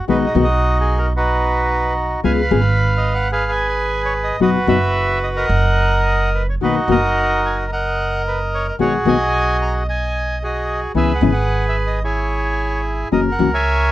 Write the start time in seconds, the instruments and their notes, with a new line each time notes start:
0.08 upright bass B1, nylon-string guitar B2 D#3 G#3 B3 F#4, bandoneon D#4 F#4 B4
0.27 bandoneon D#5
0.35 upright bass B1, nylon-string guitar B2 D#3 G#3 B3 F#4
0.44 bandoneon D#5
0.81 bandoneon G#4
0.98 bandoneon A#4
1.17 bandoneon D#4 F#4 B4
2.23 upright bass C#2, nylon-string guitar C#3 G#3 B3 F4 G#4, bandoneon B4 F5 G#5
2.42 bandoneon B5
2.51 upright bass G#1, nylon-string guitar C#3 G#3 B3 F4 G#4
2.61 bandoneon B5
2.97 bandoneon D#5
3.15 bandoneon F#5
3.32 bandoneon G#4 B4 F5
3.51 bandoneon G#5
3.69 bandoneon G#5
4.05 bandoneon C#5
4.24 bandoneon D#5
4.40 upright bass F#1, nylon-string guitar B2 F#3 B3 D#4 F#4, bandoneon F#4 B4 D#5
4.67 upright bass F#1, nylon-string guitar B2 F#3 B3 D#4 F#4, bandoneon B4 E5
5.23 bandoneon D#5
5.36 bandoneon A#4 D#5 F#5
5.49 upright bass F#1
6.35 bandoneon B4
6.49 bandoneon C#5
6.61 upright bass B1, nylon-string guitar B2 D#3 A#3 B3 F#4, bandoneon D#4 F#4 B4
6.88 upright bass F#1, nylon-string guitar B2 D#3 A#3 B3 F#4, bandoneon A#4 D#5
6.92 bandoneon F#5
7.46 bandoneon G#5
7.72 bandoneon A#4 D#5 F#5
8.28 bandoneon B4
8.55 bandoneon C#5
8.68 bandoneon D#5
8.79 upright bass B1, nylon-string guitar B2 D#3 G#3 B3 F#4, bandoneon F#4 G#4 C#5
9.05 upright bass B1, nylon-string guitar B2 D#3 G#3 B3 F#4, bandoneon D#5 G#5
9.62 bandoneon A#5
9.88 bandoneon D#5 G#5
10.43 bandoneon F#4 G#4 D#5
10.94 upright bass C#2, nylon-string guitar C#3 E3 B3 C#4 E4, bandoneon G#4 B4 E5
11.15 bandoneon F#5
11.21 upright bass G#1, nylon-string guitar C#3 E3 B3 C#4 E4
11.33 bandoneon F#5
11.69 bandoneon E5
11.87 bandoneon D#5
12.04 bandoneon E4 G#4 C#5
13.11 upright bass F#1, nylon-string guitar C#3 E3 A#3 C#4 F#4, bandoneon A#4 D#5
13.32 bandoneon F#5
13.39 upright bass C#2, nylon-string guitar C#3 E3 A#3 C#4 F#4
13.54 bandoneon C#5 E5 G#5